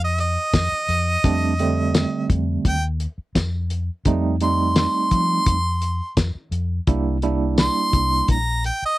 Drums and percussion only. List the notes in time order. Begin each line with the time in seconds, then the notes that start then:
0.18 closed hi-hat
0.53 kick, snare, closed hi-hat, tambourine
0.89 closed hi-hat
1.24 kick, closed hi-hat
1.59 closed hi-hat
1.94 snare, closed hi-hat, tambourine
2.30 kick, closed hi-hat
2.65 kick, closed hi-hat
3.00 closed hi-hat
3.35 kick, snare, closed hi-hat, tambourine
3.70 closed hi-hat
4.05 kick, closed hi-hat
4.41 closed hi-hat
4.76 snare, closed hi-hat, tambourine
5.11 kick, closed hi-hat
5.46 kick, closed hi-hat
5.82 closed hi-hat
6.17 kick, snare, closed hi-hat, tambourine
6.52 closed hi-hat
6.87 kick, closed hi-hat
7.22 closed hi-hat
7.58 snare, closed hi-hat, tambourine
7.93 kick, closed hi-hat
8.28 kick, closed hi-hat
8.64 closed hi-hat